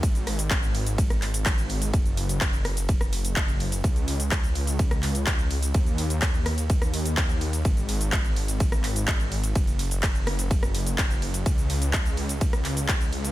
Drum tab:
RD |x---x---x---x---|x---x---x---x---|x---x---x---x---|x---x---x---x---|
HH |xxoxxxoxxxoxxxox|xxoxxxoxxxoxxxox|xxoxxxoxxxoxxxox|xxoxxxoxxxoxxxox|
SH |xx-xxx-xxx-xxx-x|xx-xxx-xxx-xxx-x|xx-xxx-xxx-xxx-x|xx-xxx-xxx-xxx-x|
CP |----x-----x-x---|----x-------x---|----x-----x-x---|----x-------x---|
SD |--r------r------|------r--r------|---------r------|------r--r------|
BD |o---o---o---o---|o---o---o---o---|o---o---o---o---|o---o---o---o---|

RD |x---x---x---x---|x---x---x---x---|x---x---x---x---|
HH |xxoxxxoxxxoxxxox|xxoxxxoxxxoxxxox|xxoxxxoxxxoxxxox|
SH |xx-xxx-xxx-xxx-x|xx-xxx-xxx-xxx-x|xx-xxx-xxx-xxx-x|
CP |----x-----x-x---|----x-------x---|----x-----x-x---|
SD |---------r------|------r--r------|---------r------|
BD |o---o---o---o---|o---o---o---o---|o---o---o---o---|